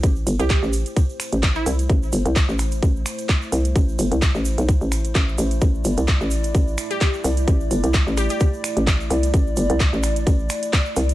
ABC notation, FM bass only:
X:1
M:4/4
L:1/16
Q:"Swing 16ths" 1/4=129
K:Am
V:1 name="FM bass" clef=bass
A,,,2 G,,, C,,2 A,,,2 z4 A,,,3 C,,2 | A,,,2 G,,, C,,2 A,,,3 A,,,2 z4 C,,2 | A,,,2 G,,, C,,2 A,,,2 B,,,2 A,,,3 A,,,2 A,,,2 | A,,,2 G,,, C,,2 A,,,3 A,,,2 z4 C,,2 |
A,,,2 G,,, C,,2 A,,,2 z4 A,,,3 C,,2 | A,,,2 G,,, C,,2 A,,,3 A,,,2 z4 C,,2 |]